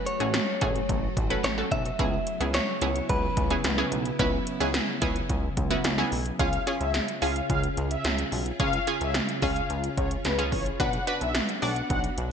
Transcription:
Already playing: string machine F#3 A3 F#4
0.06 clean electric guitar C#5, closed hi-hat
0.20 analog synth bass A1, synth pluck A3 C#4 F#4 G#4, closed hi-hat
0.34 snare, closed hi-hat
0.61 analog synth bass A1, synth pluck A3 C#4 F#4 G#4, kick, closed hi-hat
0.76 closed hi-hat
0.89 analog synth bass A1, kick, closed hi-hat
1.17 analog synth bass A1, kick, closed hi-hat
1.30 synth pluck A3 C#4 F#4 B4, closed hi-hat
1.44 analog synth bass A1, clean electric guitar C#5, snare, closed hi-hat
1.58 synth pluck A3 C#4 F#4 A4
1.71 analog synth bass B1, clean electric guitar E5, kick, closed hi-hat
1.85 closed hi-hat
1.99 analog synth bass C#2, string machine C#3 B3 E4, synth pluck B3 C#4 E4 G#4, kick, closed hi-hat
2.27 closed hi-hat
2.40 analog synth bass C#2, synth pluck B3 C#4 E4 G#4, closed hi-hat
2.54 clean electric guitar C#5, snare, closed hi-hat
2.81 analog synth bass C#2, synth pluck B3 C#4 E4 G#4, closed hi-hat
2.96 closed hi-hat
3.09 analog synth bass C#2, clean electric guitar B4, kick, closed hi-hat
3.37 analog synth bass C#2, kick, closed hi-hat
3.50 synth pluck B3 C#4 E4 G#4, closed hi-hat
3.64 analog synth bass C#2, snare, closed hi-hat
3.78 synth pluck B3 C#4 E4 G#4
3.92 analog synth bass B1, closed hi-hat
4.06 closed hi-hat
4.19 analog synth bass C#2, synth pluck B3 C#4 E4 B4, kick, closed hi-hat
4.47 closed hi-hat
4.60 analog synth bass C#2, synth pluck B3 C#4 E4 G#4, closed hi-hat
4.74 snare, closed hi-hat
5.02 analog synth bass C#2, synth pluck B3 C#4 E4 G#4, kick, closed hi-hat
5.16 closed hi-hat
5.29 analog synth bass C#2, kick, closed hi-hat
5.57 analog synth bass C#2, kick, closed hi-hat
5.70 synth pluck B3 C#4 E4 F#4, closed hi-hat
5.84 analog synth bass C#2, snare, closed hi-hat
5.98 synth pluck B3 C#4 E4 G#4
6.12 analog synth bass B1, open hi-hat
6.26 closed hi-hat
6.39 analog synth bass C#2, string machine C#3 C#4 F4 G#4, synth pluck C#4 F4 G#4, analog polysynth F5, kick, closed hi-hat
6.53 closed hi-hat
6.67 synth pluck C#4 F4 G#4, closed hi-hat
6.81 analog synth bass C#2, analog polysynth E5, closed hi-hat
6.94 snare, closed hi-hat
7.08 closed hi-hat
7.22 analog synth bass C#2, synth pluck C#4 F4 G#4, analog polysynth F5, open hi-hat
7.36 closed hi-hat
7.50 analog synth bass C#2, analog polysynth F5, kick, closed hi-hat
7.64 closed hi-hat
7.77 analog synth bass C#2, closed hi-hat
7.91 analog polysynth E5, closed hi-hat
8.05 analog synth bass C#2, snare, closed hi-hat
8.18 closed hi-hat
8.32 analog synth bass B1, open hi-hat
8.46 closed hi-hat
8.60 analog synth bass C#2, synth pluck C#4 F4 G#4, analog polysynth F5, kick, closed hi-hat
8.73 closed hi-hat
8.87 synth pluck C#4 F4 G#4, closed hi-hat
9.01 analog synth bass C#2, analog polysynth E5, closed hi-hat
9.14 snare, closed hi-hat
9.29 closed hi-hat
9.42 analog synth bass C#2, synth pluck C#4 F4 G#4, analog polysynth F5, kick, open hi-hat
9.56 closed hi-hat
9.70 analog synth bass C#2, closed hi-hat
9.84 closed hi-hat
9.97 analog synth bass C#2, analog polysynth C#5, kick, closed hi-hat
10.11 closed hi-hat
10.25 analog synth bass C#2, analog polysynth B4, snare, closed hi-hat
10.39 synth pluck C#4 F4 G#4, closed hi-hat
10.52 analog synth bass A1, analog polysynth C#5, kick, open hi-hat
10.66 closed hi-hat
10.80 analog synth bass B1, string machine B3 D4 F#4, synth pluck D4 F#4 B4, analog polysynth F#5, kick, closed hi-hat
10.93 closed hi-hat
11.07 synth pluck D4 F#4 B4, closed hi-hat
11.21 analog synth bass B1, analog polysynth E5, closed hi-hat
11.35 snare, closed hi-hat
11.49 closed hi-hat
11.62 analog synth bass B1, synth pluck D4 F#4 D5, analog polysynth F#5, open hi-hat
11.76 closed hi-hat
11.90 analog synth bass B1, analog polysynth F#5, kick, closed hi-hat
12.04 closed hi-hat
12.18 analog synth bass B1, closed hi-hat

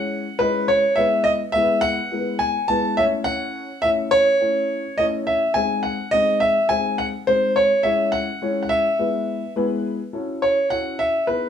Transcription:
Already playing: upright piano G#3 C#4 E4 G#4 C#5, grand piano F#5
0.39 upright piano G#3 C#4 E4 G#4 D#5, grand piano B4
0.68 grand piano C#5
0.96 upright piano G#3 B3 E4 G#4 B4, grand piano E5
1.24 grand piano D#5
1.52 upright piano G#3 B3 E4 G#4 A4, grand piano E5
1.62 upright piano B4
1.81 grand piano F#5
2.12 upright piano G#3 B3 E4 G#4 A#4
2.19 upright piano B4
2.39 grand piano G#5
2.68 upright piano G#3 B3 E4 G#4 B4, grand piano A5
2.97 upright piano A3 C#4 E4 A4 C#5, grand piano E5
3.24 grand piano F#5
3.82 upright piano A3 C#4 E4 A4 E5, grand piano E5
4.11 grand piano C#5
4.41 upright piano A3 C#4 E4 A4 C#5
4.98 upright piano A3 C#4 E4 A4 C#5, grand piano D#5
5.27 grand piano E5
5.54 upright piano G#3 C4 D#4 G#4 C5, grand piano G#5
5.83 grand piano F#5
6.11 upright piano G#3 C4 D#4 G#4 D#5, grand piano D#5
6.40 grand piano E5
6.69 upright piano G#3 C4 D#4 G#4 C5, grand piano G#5
6.98 grand piano F#5
7.27 upright piano G#3 C4 D#4 G#4 C5, grand piano C5
7.56 grand piano C#5
7.83 upright piano G#3 C#4 E4 G#4 C#5, grand piano E5
8.12 grand piano F#5
8.42 upright piano G#3 C#4 E4 G#4 C#5
8.63 grand piano F#5
8.69 grand piano E5
8.99 upright piano G#3 B3 E4 G#4 B4
9.56 upright piano G#3 B3 E4 G#4 B4
10.13 upright piano C#4 E4 F#4 A4
10.42 grand piano C#5
10.70 upright piano C#4 E4 F#4 A4, grand piano F#5
10.99 grand piano E5
11.27 upright piano B3 D#4 E4 G#4, grand piano B4

